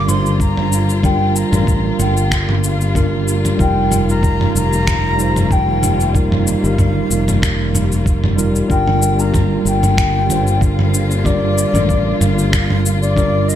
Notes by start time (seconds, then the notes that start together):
Already playing: G1 D3 G3 A#3 D4 F4 A#4
0.05 G3 D4 F4 C6, mid tom, shaker
0.10 C5
0.26 shaker
0.40 A#5, kick, shaker
0.57 mid tom
0.72 shaker
0.89 shaker
1.03 G3 D4 F4 A#4 G5, kick, mid tom, shaker
1.36 A#5, shaker
1.50 A1 G3 D4 F4, mid tom, shaker
1.55 A#4
1.67 kick, shaker
1.99 G1 G5, mid tom, shaker
2.17 shaker
2.31 finger snap, kick, shaker
2.49 mid tom
2.64 F5, shaker
2.81 shaker
2.94 G3 D4 F4 A#4, kick, mid tom, shaker
3.28 shaker
3.45 mid tom, shaker
3.57 F1 D#3 G3 D#4 F4 A#4 G5, kick, shaker
3.92 mid tom, shaker
4.06 G3 D#4 F4 A#5, shaker
4.11 A#4
4.23 kick, shaker
4.41 mid tom
4.55 F1 A#5, shaker
4.73 shaker
4.87 finger snap, kick, mid tom, shaker
5.17 G3 D#4 F4, shaker
5.22 C5
5.36 mid tom, shaker
5.51 G5, kick, shaker
5.83 mid tom, shaker
6.00 shaker
6.13 G3 D#4 F4 A#4 F5, kick, shaker
6.32 mid tom
6.47 shaker
6.61 G1 G3 D#4 F4, shaker
6.67 A#4
6.78 kick, mid tom, shaker
7.11 F1, shaker
7.28 mid tom, shaker
7.42 finger snap, kick, shaker
7.75 mid tom, shaker
7.92 shaker
8.06 kick, shaker
8.24 mid tom
8.36 G3 D#4 F4 A#4, shaker
8.56 shaker
8.68 G1 D3 G3 D4 F4 A#4 G5, kick, shaker
8.88 mid tom
9.02 shaker
9.16 G3 D4 F4, shaker
9.20 A#4 A#5
9.34 kick, mid tom, shaker
9.65 G1 G5, shaker
9.83 mid tom, shaker
9.98 finger snap, kick, shaker
10.27 G3 D4 F4, mid tom, shaker
10.32 C5
10.47 shaker
10.61 F5, kick, shaker
10.79 mid tom
10.94 shaker
11.11 shaker
11.24 G3 D4 F4 A#4 D5, kick, mid tom, shaker
11.58 shaker
11.71 A1 G3 D4 F4, mid tom, shaker
11.77 A#4
11.89 kick, shaker
12.21 G1 F5, mid tom, shaker
12.39 shaker
12.53 F5, finger snap, kick, shaker
12.70 mid tom
12.85 F5, shaker
13.01 D5, shaker
13.15 G3 D4 F4 A#4, kick, mid tom, shaker
13.48 D#5, shaker